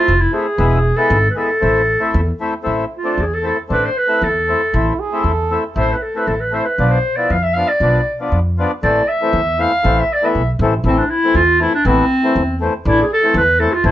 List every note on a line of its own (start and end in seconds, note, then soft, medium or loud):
0.00 0.13 A3 medium
0.00 0.14 C4 medium
0.00 0.14 E4 medium
0.00 0.21 F4 loud
0.08 0.24 F1 medium
0.20 0.35 E4 medium
0.32 0.46 A3 medium
0.32 0.47 C4 medium
0.32 0.47 E4 medium
0.32 0.98 G#4 medium
0.58 0.90 E1 medium
0.58 0.79 G#3 medium
0.58 0.79 B3 medium
0.58 0.79 E4 medium
0.97 1.17 G#3 medium
0.97 1.18 B3 medium
0.97 1.18 E4 medium
0.97 1.30 A4 medium
1.10 1.26 G#1 loud
1.30 1.39 B4 medium
1.35 1.50 G#3 medium
1.35 1.50 B3 medium
1.35 1.50 E4 medium
1.35 2.41 A4 medium
1.61 1.94 A1 medium
1.61 1.82 A3 medium
1.61 1.82 C4 medium
1.61 1.82 E4 medium
1.99 2.20 A3 medium
1.99 2.21 C4 medium
1.99 2.21 E4 medium
2.14 2.30 E2 medium
2.41 2.54 A3 medium
2.41 2.54 C4 medium
2.41 2.54 E4 medium
2.63 2.82 A1 medium
2.63 2.85 A3 medium
2.63 2.85 C4 medium
2.63 2.85 E4 medium
2.97 3.23 F4 medium
3.04 3.24 A3 medium
3.04 3.25 C4 medium
3.04 3.25 D4 medium
3.18 3.49 E2 medium
3.18 3.35 G#4 medium
3.34 3.46 A4 medium
3.42 3.57 A3 medium
3.42 3.57 C4 medium
3.42 3.57 E4 medium
3.47 3.58 A4 medium
3.69 3.86 A1 medium
3.69 3.89 A3 medium
3.69 3.90 C4 medium
3.69 3.90 D4 medium
3.69 3.86 B4 medium
3.85 3.99 C5 medium
3.97 4.25 B4 medium
4.08 4.28 A3 medium
4.08 4.28 C4 medium
4.08 4.28 E4 medium
4.22 4.53 E2 medium
4.22 5.00 A4 medium
4.48 4.61 A3 medium
4.48 4.61 C4 medium
4.48 4.62 E4 medium
4.73 4.89 A1 loud
4.73 4.93 A3 medium
4.73 4.93 C4 medium
4.73 5.01 E4 medium
4.73 4.93 E4 medium
5.00 5.26 G#4 medium
5.12 5.32 A3 medium
5.12 5.32 C4 medium
5.12 5.32 E4 medium
5.24 5.55 E2 medium
5.24 5.64 A4 loud
5.50 5.63 A3 medium
5.50 5.64 C4 medium
5.50 5.64 E4 medium
5.76 5.91 A1 medium
5.76 5.96 A3 medium
5.76 5.96 C4 medium
5.76 5.96 E4 medium
5.76 5.94 C5 medium
5.93 6.04 B4 medium
6.02 6.18 A4 medium
6.15 6.34 A3 medium
6.15 6.35 C4 medium
6.15 6.35 E4 medium
6.15 6.29 B4 medium
6.27 6.58 A1 medium
6.27 6.42 A4 medium
6.41 6.55 B4 medium
6.51 6.65 A3 medium
6.51 6.66 C4 medium
6.51 6.66 E4 medium
6.51 6.66 C5 medium
6.65 6.92 B4 medium
6.78 6.94 B1 medium
6.78 6.98 F3 medium
6.78 6.99 B3 medium
6.78 6.99 D4 medium
6.90 7.18 C5 medium
7.16 7.37 F3 medium
7.16 7.37 B3 medium
7.16 7.37 E4 medium
7.16 7.32 D5 medium
7.30 7.61 F2 medium
7.30 7.44 F5 medium
7.43 7.55 E5 medium
7.53 7.69 F3 medium
7.53 7.69 B3 medium
7.53 7.69 F5 medium
7.57 7.70 D4 medium
7.68 8.19 D5 medium
7.80 7.96 B1 medium
7.80 8.01 F3 medium
7.80 8.01 B3 medium
7.80 8.01 D4 medium
8.20 8.39 F3 medium
8.20 8.39 B3 medium
8.20 8.40 D4 medium
8.32 8.63 F2 medium
8.58 8.71 F3 medium
8.58 8.71 B3 medium
8.58 8.72 D4 medium
8.83 8.98 A1 medium
8.83 9.03 E3 medium
8.83 9.02 A3 medium
8.83 9.03 C4 medium
8.83 9.09 D5 medium
9.08 9.61 E5 loud
9.22 9.41 E3 medium
9.22 9.41 A3 medium
9.22 9.41 C4 medium
9.33 9.64 E2 medium
9.58 9.72 E3 medium
9.58 9.72 A3 medium
9.58 9.72 C4 medium
9.58 10.00 F5 loud
9.83 10.00 A1 loud
9.83 10.03 E3 medium
9.83 10.03 A3 medium
9.83 10.04 C4 medium
9.99 10.14 E5 medium
10.13 10.27 D5 medium
10.22 10.42 E3 medium
10.22 10.42 A3 medium
10.22 10.42 B3 medium
10.22 10.49 E5 medium
10.35 10.58 B1 medium
10.59 10.83 A1 medium
10.59 10.74 E3 medium
10.59 10.74 A3 medium
10.59 10.74 C4 loud
10.84 10.99 A1 medium
10.84 11.04 E3 medium
10.84 11.05 A3 medium
10.84 11.05 C4 medium
10.84 11.00 C4 medium
10.98 11.12 D4 medium
11.10 11.37 E4 loud
11.23 11.42 E3 medium
11.23 11.43 A3 medium
11.23 11.43 C4 medium
11.34 11.65 E2 medium
11.34 11.61 F4 loud
11.60 11.73 E3 medium
11.60 11.73 A3 medium
11.60 11.74 C4 medium
11.60 11.73 E4 medium
11.74 11.88 D4 loud
11.85 12.00 A1 medium
11.85 12.05 E3 medium
11.85 12.05 A3 medium
11.85 12.05 B3 medium
11.85 12.61 C4 loud
12.23 12.42 E3 medium
12.23 12.43 A3 medium
12.23 12.43 C4 medium
12.35 12.66 E2 medium
12.60 12.73 E3 medium
12.60 12.74 A3 medium
12.60 12.74 C4 medium
12.85 13.01 A1 medium
12.85 13.05 E3 medium
12.85 13.05 A3 medium
12.85 13.05 D4 medium
12.85 12.99 E4 loud
13.02 13.12 G#4 medium
13.13 13.35 A4 loud
13.23 13.42 E3 medium
13.23 13.42 A3 medium
13.23 13.42 C4 medium
13.34 13.64 E2 medium
13.34 13.61 B4 loud
13.59 13.73 E3 medium
13.59 13.73 A3 medium
13.59 13.73 C4 medium
13.59 13.74 A4 medium
13.72 13.85 F4 medium
13.84 13.91 A1 medium
13.84 13.91 E3 medium
13.84 13.91 A3 medium
13.84 13.91 C4 medium
13.84 13.91 E4 medium